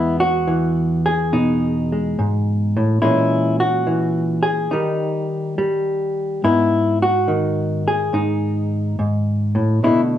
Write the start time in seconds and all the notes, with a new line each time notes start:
Already playing: E2 E3 G#3 B3 E4
0.20 F#4
0.47 E3
1.06 G#4
1.33 B2 D#4
1.92 G#3
2.19 G#2
2.77 A2
3.02 A#2 E3 G#3 C#4 E4
3.60 F#4
3.87 E3
4.43 G#4
4.71 D#3 G3 D#4
5.58 G3
6.44 G#2 B3 E4
7.02 F#4
7.28 D#3
7.88 G#4
8.13 G#2 D#4
8.99 G#2
9.55 A2
9.84 B2 D3 A3 E4